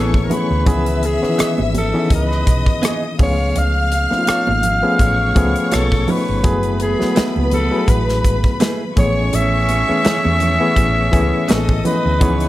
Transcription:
Already playing: fingered electric bass A1, reed electric piano E3 A3 B3 C#4 E4 G#4, clean electric guitar B3 E4 G#4 C#5, alto saxophone A4, string section C#5 C#6
0.14 kick
0.25 alto saxophone A#4
0.30 reed electric piano E3 A3 B3 C#4 G#4, alto saxophone B4, closed hi-hat, muted conga, low conga
0.51 fingered electric bass D2
0.66 fingered electric bass C#2, reed electric piano D#3 E3 B3 C#4 G#4, string section E5 E6, kick, closed hi-hat, muted conga, low conga
0.86 closed hi-hat
1.03 alto saxophone G#4, closed hi-hat, muted conga
1.22 reed electric piano D#3 B3 C#4 B4, cross-stick
1.29 reed electric piano E3
1.38 clean electric guitar B3 E4 G#4 D#5, muted fingered electric bass stroke, cross-stick, closed hi-hat, muted conga
1.58 fingered electric bass G#1, high conga
1.74 alto saxophone A4, closed hi-hat, muted conga, high conga, low conga
1.94 reed electric piano E3 B3 C#4 D#4 G#4
2.10 fingered electric bass C#2, string section D#5 D#6, kick, closed hi-hat, muted conga
2.15 alto saxophone B4
2.32 cross-stick
2.47 fingered electric bass B1, kick, closed hi-hat
2.66 kick
2.82 clean electric guitar B3 E4 G#4 D#5, cross-stick, closed hi-hat, muted conga, high conga
3.18 fingered electric bass C#2, reed electric piano F3 A3 B3 C#4 G#4, string section F5 F6, kick, open hi-hat, muted conga, low conga
3.23 alto saxophone C#5
3.55 fingered electric bass C#2, alto saxophone F5, closed hi-hat, muted conga, low conga
3.92 closed hi-hat, muted conga
4.10 reed electric piano F3 A3 B3 C#4 D#4, muted fingered electric bass stroke, cross-stick, high conga
4.18 reed electric piano F4
4.27 clean electric guitar B3 F4 A4 C#5, muted fingered electric bass stroke, cross-stick, closed hi-hat, muted conga
4.47 fingered electric bass G#1, high conga
4.63 closed hi-hat, muted conga, low conga
4.82 reed electric piano F3 A3 B3 C#4 G#4
4.99 fingered electric bass A1, string section C#5 C#6, kick, closed hi-hat, muted conga
5.36 fingered electric bass C#2, reed electric piano F3 A3 B3 C#4 G#4, kick, closed hi-hat
5.56 closed hi-hat
5.72 fingered electric bass B1, clean electric guitar B3 F4 A4 C#5, alto saxophone A4, cross-stick, closed hi-hat, muted conga, high conga
5.92 kick
6.08 reed electric piano F3 A3 B3 C#4 D#4, alto saxophone B4, open hi-hat, muted conga, low conga
6.29 fingered electric bass G1
6.43 fingered electric bass F#1, trombone section E3 A3 B3, reed electric piano F#3 A3 B3 E4 G#4, string section B4 B5, kick, closed hi-hat, muted conga, low conga
6.63 closed hi-hat
6.80 alto saxophone G#4, closed hi-hat, muted conga
6.99 reed electric piano F#3 A3 B3 E4 B4, muted fingered electric bass stroke, snare
7.16 clean electric guitar A3 E4 G#4 B4, muted fingered electric bass stroke, snare, closed hi-hat, muted conga
7.36 fingered electric bass C#2, high conga
7.51 alto saxophone A4, closed hi-hat, muted conga, high conga, low conga
7.71 reed electric piano F#3 A3 B3 E4 G#4
7.88 fingered electric bass A1, alto saxophone B4, kick, closed hi-hat
8.09 snare
8.24 fingered electric bass G#1, kick, closed hi-hat
8.44 kick
8.60 clean electric guitar A3 E4 G#4 B4, snare, closed hi-hat, muted conga, high conga
8.96 fingered electric bass A1, reed electric piano E3 A3 B3 C#4 G#4, trombone section E3 A3 C#4, string section C#5 C#6, alto saxophone C#5, kick, closed hi-hat, muted conga, low conga
9.33 fingered electric bass A1, alto saxophone E5, closed hi-hat, muted conga, low conga
9.69 closed hi-hat, muted conga
9.88 reed electric piano E3 A3 B3 C#4 G#4, muted fingered electric bass stroke
10.04 clean electric guitar B3 E4 G#4 C#5, muted fingered electric bass stroke, snare, closed hi-hat, muted conga
10.25 fingered electric bass E2, high conga
10.40 closed hi-hat, muted conga, low conga
10.60 reed electric piano E3 A3 B3 C#4 G#4
10.76 fingered electric bass A1, kick, closed hi-hat, muted conga
11.12 fingered electric bass C#2, reed electric piano E3 A3 B3 C#4 G#4, kick, closed hi-hat
11.48 fingered electric bass A1, clean electric guitar B3 E4 G#4 C#5, alto saxophone A4, string section D#5 D#6, snare, closed hi-hat, high conga
11.69 kick
11.84 reed electric piano E3 A3 B3 C#4 E4, alto saxophone B4, closed hi-hat, low conga
12.06 fingered electric bass D2
12.20 fingered electric bass C#2, reed electric piano E3 B3 C#4 D#4 G#4, trombone section E3 B3 D#4, string section C#5 C#6, kick, closed hi-hat, low conga
12.40 closed hi-hat

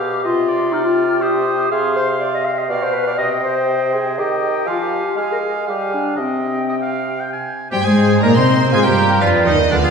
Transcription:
Already playing: bassoon B2, clarinet G4, oboe F5, flute D6
0.23 bassoon C3, clarinet F4, oboe D#5, flute C6
0.48 oboe D5
0.72 clarinet D#4, flute F6
0.85 clarinet F4
1.21 clarinet G4, oboe C5, flute D#6
1.71 bassoon C3, clarinet G#4, oboe F5, flute C6
1.96 clarinet C5
2.20 clarinet D5
2.34 clarinet D#5
2.44 clarinet F5
2.58 clarinet D#5
2.69 bassoon B2, clarinet D5, oboe F5, flute G5
2.83 clarinet C5
2.93 clarinet B4
3.07 clarinet D5
3.18 bassoon C3, clarinet D#5, oboe D#5, flute G5
3.43 clarinet C5
3.94 clarinet G#4
4.17 bassoon D#3, clarinet G4, oboe D#5, flute G5
4.66 bassoon F3, clarinet F4, oboe F5, flute G#5
4.80 clarinet G4
5.16 bassoon G#3, clarinet G#4, oboe F5, flute G#5
5.32 clarinet A#4
5.42 clarinet G#4
5.67 bassoon G3, clarinet G4, oboe F5, flute G#5
5.94 clarinet D4
6.17 bassoon C3, clarinet C4, oboe D#5, flute G5
6.69 oboe D#5
6.82 oboe F5
7.20 oboe G5
7.33 oboe G#5
7.71 double bass section G2, viola section G3, cello section G3, french horn section G3, oboe G4, violin section G4 G5, flute C5
7.83 double bass section G#2, viola section G#3, cello section G#3, french horn section G#3, oboe G#4, violin section G#4 G#5, flute C5
8.20 double bass section A#2, viola section A#3, cello section A#3, french horn section A#3, bassoon D#4, violin section A#4 A#5, oboe A#4, flute D5
8.33 double bass section C3, viola section C4, cello section C4, french horn section C4, violin section C5 C6, oboe C5, flute D#5
8.70 double bass section G#2, cello section G#3, viola section G#3, french horn section G#3, bassoon F4, violin section G#4 G#5, flute C5
8.74 oboe G#4
8.83 double bass section G2, french horn section G3, cello section G3, viola section G3, violin section G4 G5, oboe G4, flute A#4
9.20 double bass section F2, viola section F3, cello section F3, french horn section F3, bassoon D4, violin section F4 F5, oboe F4, flute B4
9.45 double bass section D#2, viola section D#3, cello section D#3, french horn section D#3, oboe D#4, violin section D#4 D#5, flute G4
9.70 double bass section D2, viola section D3, cello section D3, french horn section D3, bassoon B3, oboe D4, violin section D4 D5, flute F4
9.82 double bass section F2, cello section F3, viola section F3, french horn section F3, oboe F4, violin section F4 F5, flute G#4

